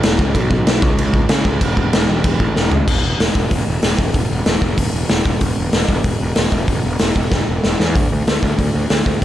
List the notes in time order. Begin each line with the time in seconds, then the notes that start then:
0.03 E1, snare, crash
0.19 C#2, kick
0.35 B1, kick, crash
0.51 B1, kick
0.67 B1, snare, crash
0.82 C#2, kick
0.98 C#2, crash
1.14 kick
1.29 C#3, snare, crash
1.45 C#2, kick
1.61 E1, kick, crash
1.77 E1, kick
1.93 E1, snare, crash
2.09 E1
2.24 E1, kick, crash
2.40 A1, kick
2.56 E1, snare
2.71 C#2, floor tom
2.88 E1, kick, crash
3.03 E1
3.19 E1, snare, open hi-hat
3.35 E1, kick
3.51 E1, kick, open hi-hat
3.68 E1
3.82 E1, snare, open hi-hat
3.99 E1, kick
4.14 E1, kick, open hi-hat
4.31 E1
4.46 E1, snare, open hi-hat
4.62 E1, kick
4.78 E1, kick, open hi-hat
4.94 E1
5.09 E1, snare, open hi-hat
5.25 E1, kick
5.41 E1, kick, open hi-hat
5.58 E1
5.73 E1, snare, open hi-hat
5.89 E1, kick
6.04 E1, kick, open hi-hat
6.21 E1
6.36 E1, snare, open hi-hat
6.52 E1, kick
6.68 E1, kick, open hi-hat
6.85 E1
6.99 E1, snare, open hi-hat
7.16 E1, kick
7.32 E1, kick, snare
7.49 E1
7.64 E1, snare
7.80 E2, snare
7.96 D2, kick, open hi-hat
8.12 D2
8.27 D2, snare, open hi-hat
8.43 D2, kick
8.59 D2, kick, open hi-hat
8.75 D2
8.90 D2, snare, open hi-hat
9.06 D2, kick